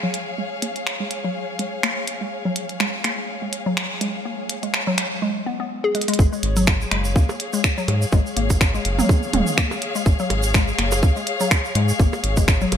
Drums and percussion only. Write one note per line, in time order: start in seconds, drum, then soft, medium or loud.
0.14 closed hi-hat medium
0.62 closed hi-hat medium
0.76 closed hi-hat soft
0.87 finger snap medium
1.11 closed hi-hat medium
1.59 closed hi-hat medium
1.83 finger snap loud
1.83 closed hi-hat soft
2.08 closed hi-hat loud
2.56 closed hi-hat medium
2.69 closed hi-hat soft
2.80 finger snap loud
3.04 finger snap medium
3.04 closed hi-hat medium
3.53 closed hi-hat medium
3.77 finger snap loud
3.77 closed hi-hat soft
4.01 closed hi-hat loud
4.49 closed hi-hat loud
4.63 closed hi-hat soft
4.74 finger snap medium
4.98 finger snap medium
4.98 closed hi-hat loud
5.95 closed hi-hat medium
6.01 closed hi-hat medium
6.08 closed hi-hat medium
6.14 closed hi-hat medium
6.19 kick loud
6.19 shaker medium
6.33 shaker soft
6.43 closed hi-hat medium
6.57 closed hi-hat soft
6.57 shaker medium
6.67 finger snap loud
6.67 kick loud
6.67 percussion blips soft
6.67 shaker medium
6.81 shaker soft
6.91 finger snap medium
6.91 closed hi-hat medium
7.05 shaker medium
7.16 kick loud
7.16 shaker medium
7.29 percussion blips soft
7.29 shaker soft
7.40 closed hi-hat medium
7.53 shaker medium
7.64 finger snap loud
7.64 kick loud
7.64 closed hi-hat soft
7.64 shaker medium
7.78 shaker soft
7.88 closed hi-hat medium
7.88 percussion blips soft
8.02 shaker medium
8.12 kick loud
8.12 shaker medium
8.27 shaker soft
8.37 closed hi-hat loud
8.50 kick medium
8.50 closed hi-hat soft
8.50 percussion blips soft
8.50 shaker medium
8.61 finger snap medium
8.61 kick loud
8.61 shaker medium
8.75 shaker soft
8.85 closed hi-hat medium
8.99 mid tom medium
8.99 shaker medium
9.09 kick loud
9.09 percussion blips soft
9.09 shaker medium
9.23 shaker soft
9.33 closed hi-hat loud
9.33 mid tom loud
9.47 shaker medium
9.58 finger snap loud
9.58 kick loud
9.58 closed hi-hat soft
9.58 shaker medium
9.71 percussion blips soft
9.71 shaker soft
9.82 closed hi-hat medium
9.95 shaker medium
10.06 kick loud
10.06 shaker medium
10.19 shaker soft
10.30 closed hi-hat loud
10.30 percussion blips soft
10.43 closed hi-hat soft
10.43 shaker medium
10.54 finger snap medium
10.54 kick loud
10.54 shaker medium
10.68 shaker soft
10.79 finger snap medium
10.79 closed hi-hat loud
10.92 percussion blips soft
10.92 shaker medium
11.03 kick loud
11.03 shaker medium
11.16 shaker soft
11.27 closed hi-hat loud
11.40 shaker medium
11.51 finger snap loud
11.51 kick loud
11.51 closed hi-hat soft
11.51 percussion blips soft
11.51 shaker medium
11.65 shaker soft
11.75 closed hi-hat loud
11.89 shaker medium
12.00 kick loud
12.00 shaker medium
12.13 percussion blips soft
12.13 shaker soft
12.24 closed hi-hat medium
12.37 kick medium
12.37 closed hi-hat soft
12.37 shaker medium
12.48 finger snap medium
12.48 kick loud
12.48 shaker medium
12.61 shaker soft
12.72 closed hi-hat medium
12.72 percussion blips soft